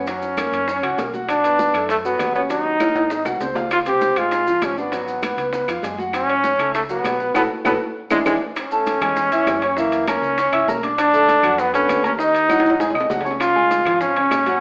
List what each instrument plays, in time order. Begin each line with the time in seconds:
Already playing: fingered electric bass F#2
0.07 grand piano F#3 F#4, trombone C#4, high bongo, high conga, high timbale, maracas
0.22 high bongo, high conga, maracas
0.37 grand piano A#3 A#4, high bongo, high conga, high timbale, low timbale, claves, maracas
0.52 fingered electric bass F#2, high bongo, high timbale, maracas
0.67 grand piano C#4 C#5, high bongo, high conga, maracas
0.83 fingered electric bass C#2, grand piano F#4 F#5, high bongo, high conga, high timbale, claves
0.98 fingered electric bass B1, grand piano A#3 A#4, high bongo, low bongo, high conga, high timbale, low timbale, maracas
1.13 grand piano F#4 F#5, high conga, maracas
1.28 trombone D4, high bongo, high conga, high timbale, claves, maracas
1.44 grand piano B3 B4, high bongo, high conga, high timbale, maracas
1.59 high bongo, high conga, low timbale, maracas
1.74 fingered electric bass F#2, grand piano A3 A4, high bongo, high conga, high timbale, claves, maracas
1.89 trombone A3, high bongo, high conga, high timbale, maracas
2.04 grand piano F#3 F#4, trombone B3, high bongo, high conga, maracas
2.19 fingered electric bass D#2, high bongo, low bongo, high conga, high timbale, low timbale, claves, maracas
2.35 trombone B3, grand piano C#4 C#5, high conga, maracas
2.50 grand piano F#3 F#4, trombone D#4, high bongo, high conga, high timbale, maracas
2.65 high bongo, high conga
2.80 grand piano A#3 A#4, high bongo, high conga, high timbale, claves, maracas
2.95 fingered electric bass G#1, high bongo, high timbale, maracas
3.10 grand piano D#4 D#5, high bongo, high conga, low timbale, maracas
3.25 fingered electric bass C2, grand piano F#4 F#5, high bongo, high conga, claves, maracas
3.40 fingered electric bass C#2, grand piano C4 C5, high conga, low timbale, maracas
3.55 grand piano F4 F5, low bongo, high conga, low timbale, maracas
3.71 trombone F4, high bongo, high timbale, claves, maracas
3.86 grand piano C4 C5, trombone G4, high bongo, high conga, high timbale, maracas
4.01 high bongo, high conga, low timbale, maracas
4.16 fingered electric bass G#1, grand piano G#3 G#4, trombone F4, high bongo, high conga, high timbale, claves, maracas
4.31 high bongo, high conga, high timbale, maracas
4.47 grand piano F3 F4, high bongo, high conga, maracas
4.61 fingered electric bass G#1, trombone C#4, high bongo, low bongo, high conga, high timbale, low timbale, claves, maracas
4.77 trombone B3, grand piano D4 D5, high conga, maracas
4.92 grand piano F#3 F#4, high bongo, high conga, high timbale, maracas
5.08 high bongo, high conga, maracas
5.22 grand piano B3 B4, high bongo, high conga, high timbale, low timbale, claves, maracas
5.37 fingered electric bass C#2, high bongo, high timbale, maracas
5.53 grand piano B3 B4, high bongo, high conga, maracas
5.68 fingered electric bass F2, grand piano F4 F5, high bongo, high conga, high timbale, claves, maracas
5.83 fingered electric bass F#2, grand piano G#3 G#4, high bongo, low bongo, high conga, high timbale, low timbale, maracas
5.98 grand piano F#4 F#5, high conga, maracas
6.13 trombone C#4, high bongo, high conga, high timbale, claves, maracas
6.28 grand piano C#4 C#5, high bongo, high conga, high timbale
6.44 high bongo, high conga, low timbale, maracas
6.58 fingered electric bass C#2, grand piano A3 A4, high bongo, high conga, high timbale, claves, maracas
6.74 trombone A3, high bongo, high timbale, maracas
6.89 grand piano F#3 F#4, trombone B3, high bongo, high conga, maracas
7.04 fingered electric bass B1, high bongo, low bongo, high conga, high timbale, low timbale, claves, maracas
7.20 grand piano B3 B4, high conga, maracas
7.34 fingered electric bass B1, trombone B3, grand piano F#4 A4 B4, high bongo, high conga, high timbale, claves, maracas
7.65 fingered electric bass B1, trombone B3, grand piano F#4 A4 B4, high bongo, high conga, high timbale, claves, maracas
8.10 fingered electric bass E2, trombone G#3, grand piano D4 E4 G#4, high bongo, high conga, high timbale, claves, maracas
8.26 fingered electric bass E2, trombone G#3, grand piano D4 E4 G#4, high bongo, high conga, high timbale, claves, maracas
8.56 trombone C#4, high bongo, high conga, high timbale, claves, maracas
8.71 grand piano A3 A4 A5, high bongo, high conga, maracas
8.86 high bongo, high conga, high timbale, low timbale, maracas
9.01 fingered electric bass E2, grand piano G#3 G#4 G#5, high conga, low conga, high timbale, claves, maracas
9.16 high bongo, high conga, maracas
9.31 grand piano E3 E4 E5, high bongo, high conga, high timbale, maracas
9.46 fingered electric bass F#2, high bongo, low bongo, high conga, high timbale, low timbale, claves, maracas
9.62 grand piano C#4 C#5 C#6, high bongo, high timbale, maracas
9.77 grand piano E3 E4 E5, trombone A#3, high bongo, high conga, maracas
9.92 high bongo, high conga, high timbale, maracas
10.07 grand piano A#3 A#4 A#5, trombone C#4, high bongo, high conga, high timbale, low timbale, claves, maracas
10.22 fingered electric bass C#2, high conga, maracas
10.37 grand piano C#4 C#5 C#6, high bongo, high conga, high timbale, maracas
10.52 fingered electric bass C#2, grand piano E4 E5 E6, high bongo, high conga, high timbale, claves
10.67 fingered electric bass B1, grand piano A#3 A#4 A#5, high bongo, low bongo, high conga, low timbale, maracas
10.83 grand piano D4 D5 D6, high bongo, high conga, high timbale, maracas
10.98 trombone D4, high bongo, high timbale, claves, maracas
11.13 grand piano A3 A4 A5, high bongo, high conga, maracas
11.29 high bongo, high conga, high timbale, low timbale, maracas
11.43 fingered electric bass F#2, grand piano F#3 F#4 F#5, high conga, low conga, high timbale, claves, maracas
11.58 trombone B3, high bongo, high conga, maracas
11.73 grand piano D3 B3 B4, trombone C#4, high bongo, high conga, high timbale, maracas
11.88 fingered electric bass D#2, high bongo, low bongo, high conga, high timbale, low timbale, claves, maracas
12.03 grand piano A#3 A#4 A#5, trombone C#4, high bongo, high conga, high timbale, maracas
12.18 grand piano D#3 D#4 D#5, trombone D#4, high bongo, maracas
12.34 high bongo, high conga, high timbale, maracas
12.49 grand piano F#3 F#4 F#5, high bongo, high conga, high timbale, claves, maracas
12.60 high timbale
12.64 fingered electric bass G#1, maracas
12.70 high timbale
12.79 grand piano G#3 G#4 G#5, high bongo, high conga, high timbale, maracas
12.90 grand piano D#4 D#5, high timbale
12.95 fingered electric bass C2, grand piano D#6, high bongo, high conga, claves
13.00 low timbale
13.10 fingered electric bass C#2, grand piano F#3 F#4 F#5, high bongo, low bongo, high conga, low timbale, maracas
13.21 low timbale
13.25 grand piano C#4 C#5 C#6, high bongo, maracas
13.31 low timbale
13.40 trombone F4, high bongo, high timbale, claves, maracas
13.55 grand piano G#3 G#4 G#5, high bongo, high conga
13.70 high bongo, high conga, high timbale, low timbale, maracas
13.85 fingered electric bass G#1, grand piano F3 F4 F5, high conga, low conga, high timbale, claves, maracas
14.01 trombone C#4, high bongo, high conga, low conga, maracas
14.16 grand piano C#3 C#4 C#5, high bongo, high conga, high timbale
14.30 fingered electric bass G#1, high bongo, low bongo, high conga, high timbale, low timbale, claves, maracas
14.46 grand piano F#3 F#4 F#5, high bongo, high conga, high timbale, maracas